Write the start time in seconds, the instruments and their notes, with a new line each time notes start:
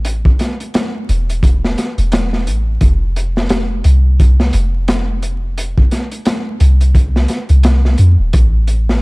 Already playing: 808-style bass A1
0.05 closed hi-hat
0.25 kick
0.39 snare, closed hi-hat
0.60 closed hi-hat
0.74 snare, closed hi-hat
1.09 808-style bass E1, closed hi-hat
1.29 closed hi-hat
1.43 kick, closed hi-hat
1.64 snare
1.78 snare, closed hi-hat
1.98 808-style bass E1, closed hi-hat
2.12 snare, closed hi-hat
2.33 snare
2.47 808-style bass A1, closed hi-hat
2.81 808-style bass F1, kick, closed hi-hat
3.16 closed hi-hat
3.37 snare
3.49 snare, closed hi-hat
3.84 808-style bass C2, closed hi-hat
4.20 kick, closed hi-hat
4.40 snare
4.53 808-style bass F1, closed hi-hat
4.88 snare, closed hi-hat
5.23 closed hi-hat
5.58 closed hi-hat
5.78 kick
5.91 snare, closed hi-hat
6.12 closed hi-hat
6.25 snare, closed hi-hat
6.60 808-style bass C2, closed hi-hat
6.81 closed hi-hat
6.95 kick, closed hi-hat
7.16 snare
7.28 snare, closed hi-hat
7.49 808-style bass C2, closed hi-hat
7.63 snare, closed hi-hat
7.85 snare
7.98 808-style bass F2, closed hi-hat
8.19 808-style bass D#1
8.33 808-style bass A1, kick, closed hi-hat
8.67 closed hi-hat
8.89 snare